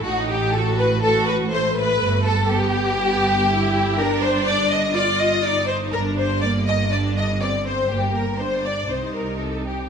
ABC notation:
X:1
M:4/4
L:1/8
Q:1/4=122
K:G
V:1 name="Violin section"
F G A B A B c B- | B A G6 | [K:Gm] B c d e d e d c | B c d e d e d c |
G B c d c B A G |]
V:2 name="Violin section"
F G A B A B c B- | B A G6 | [K:Gm] B c d e d e d c | B c d e d e d c |
G B c d c B A G |]
V:3 name="Viola section"
^D2 F2 F2 A,2- | A,2 B,2 B,2 E2 | [K:Gm] D4 F2 E2 | D2 B,2 D2 C2 |
B,2 D2 E4 |]
V:4 name="Cello section" clef=bass
A,,8 | G,,8- | [K:Gm] G,,8 | G,,8 |
G,,4 C,4 |]
V:5 name="Double bass section" clef=bass
A,,,8 | G,,,8- | [K:Gm] G,,,8 | G,,,8 |
G,,,4 C,,4 |]